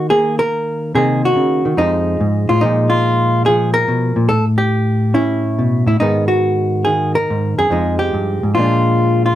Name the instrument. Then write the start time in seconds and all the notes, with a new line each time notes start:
hollow-body jazz guitar
Already playing: D#3
0.10 A#3 G#4
0.39 A#4
0.95 C3 D#3 A#3 D#4 G#4
1.25 F#4
1.36 C#3
1.65 D#3
1.77 F2 F3 G#3 D#4
2.20 G#2
2.49 A2 F4
2.61 A#2 F3 G#3 D#4
2.90 F4
3.46 F3 G#4
3.74 A#4
3.88 B2
4.16 A#2
4.29 A2 A4
4.58 G4
5.14 C#4 E4
5.59 B2
5.86 A2 E4
6.00 G#2 D#3 B3 D#4
6.28 F#4
6.85 D#3 G#4
7.15 A#4
7.30 G#2
7.58 F#2 G#4
7.70 F2 F3 G#3 D#4
7.99 G4
8.14 G2
8.43 G#2
8.55 A#2 F3 G#3 F4
8.59 D4
9.26 F4